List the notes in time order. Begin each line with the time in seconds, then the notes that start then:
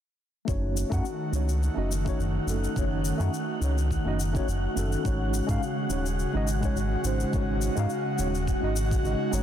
0.45 F#1 D#3 A3 C#4 D#4 F#4, kick, shaker
0.49 C#5 F#5
0.77 shaker
0.90 F#2 A3 C#4 D#4 F#4 F#5, kick, shaker
1.05 shaker
1.31 C#2 A3 C#4 D#4 F#4, shaker
1.36 C#5
1.49 shaker
1.63 shaker
1.74 F#1 A3 C#4 D#4 F#4 D#5
1.92 shaker
2.05 A3 C#4 D#4 F#4 C#5, kick, shaker
2.19 F#1, shaker
2.46 F#1 A3 C#4 D#4 F#4, shaker
2.50 A4
2.64 shaker
2.75 F#1 A3 C#4 D#4 F#4 C#5, kick, shaker
3.05 shaker
3.18 F#2 A3 C#4 D#4 F#4, shaker
3.22 F#5
3.34 shaker
3.60 C#2 A3 C#4 D#4 F#4 C#5, shaker
3.78 shaker
3.91 kick, shaker
4.04 F#1 A3 C#4 D#4 F#4 D#5
4.20 shaker
4.33 A3 C#4 D#4 F#4 C#5, kick, shaker
4.47 F#1, shaker
4.75 F#1 A3 C#4 D#4 F#4, shaker
4.79 A4
4.92 shaker
5.03 G#1 C#3 G#3 C#4 D#4 F#4 C#5, kick, shaker
5.34 shaker
5.46 G#2 G#3 C#4 D#4 F#4, kick, shaker
5.50 F5
5.63 shaker
5.88 D#1 G#3 C#4 D#4 F#4 C#5, shaker
6.06 shaker
6.19 shaker
6.33 G#1 G#3 C#4 D#4 F#4 D#5
6.48 shaker
6.61 G#3 C#4 D#4 F#4, kick, shaker
6.65 C#5
6.75 G#1, shaker
7.03 G#1 G#3 C#4 D#4 F#4 C5, shaker
7.20 shaker
7.31 G#1 G#3 C#4 D#4 F#4, kick, shaker
7.35 C#5
7.62 shaker
7.75 G#2 G#3 C#4 D#4 F#4 F5, shaker
7.90 shaker
8.17 D#1 G#3 C#4 D#4 F#4 C#5, shaker
8.35 shaker
8.47 kick, shaker
8.60 G#1 G#3 C#4 D#4 F#4 D#5
8.76 shaker
8.91 kick, shaker
9.03 G#1 G#3 C#4 D#4 F#4, shaker
9.07 D#5
9.31 G#1 G#3 C#4 D#4 F#4 C#5, shaker